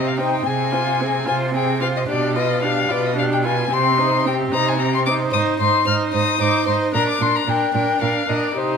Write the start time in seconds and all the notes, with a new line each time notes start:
Already playing: C3 C4 G4
0.07 F5
0.18 D#4 C5 G5
0.46 C3 C4 G#4 G#5
0.72 F4 C5
1.00 C4 G#4
1.26 C3 F4 C5 G#5
1.54 C4 G#4 G5
1.80 F4 C5 F5
1.96 D#5
2.09 B2 D4 G4 D5
2.36 F4 B4 D#5
2.62 D4 G4 F5
2.89 B2 F4 B4 D5
3.06 D#5
3.16 D4 G4 F5
3.32 G5
3.44 F4 B4 G#5
3.71 C3 C4 G4 C6
3.98 D#4 C5
4.25 C4 G4 G5
4.51 C3 D#4 C5 A#5
4.68 G#5
4.79 C4 G4 A#5
4.94 C6
5.06 D#4 C5 D6
5.33 G#2 D#4 C5 D#6
5.59 G#2 D#4 C5 C6
5.86 G#2 D#4 C5 F6
6.13 G#2 D#4 C5 D#6
6.40 G#2 D#4 C5 D6
6.67 G#2 D#4 C5 C6
6.94 A#2 D4 A#4 A#5
7.09 D6
7.21 A#2 D4 A#4 C6
7.35 A#5
7.47 A#2 D4 A#4 G5
7.74 A#2 D4 A#4 G5
8.01 A#2 D4 A#4 F5
8.28 A#2 D4 A#4 D#5
8.44 D5
8.56 C3 D#4 G4 C5